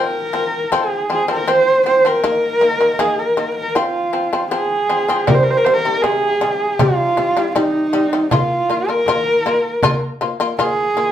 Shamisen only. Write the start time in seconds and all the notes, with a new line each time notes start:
Already playing: F3 C4
0.33 F3 C4
0.72 F3 C4
1.10 F3 C4
1.28 F3 C4
1.48 F3 C4
1.86 F3 C4
2.05 F3 C4
2.24 D#3 A#3
2.61 D#3 A#3
2.81 D#3 A#3
2.99 D#3 A#3
3.37 D#3 A#3
3.75 F3 C4
4.13 F3 C4
4.33 F3 C4
4.51 F3 C4
4.89 F3 C4
5.08 F3 C4
5.27 C3 G3
5.66 C3 G3
5.85 C3 G3
6.04 C3
6.41 C3 G3
6.79 C3 G3
7.17 C3 G3
7.37 C3 G3
7.56 C3 G3
7.93 C3 G3
8.13 C3 G3
8.31 A#3 F4
8.70 A#3 F4
8.89 A#3 F4
9.08 A#3 F4
9.46 A#3 F4
9.83 A#3 F4
10.21 A#3 F4
10.40 A#3 F4
10.59 A#3 F4
10.97 A#3 F4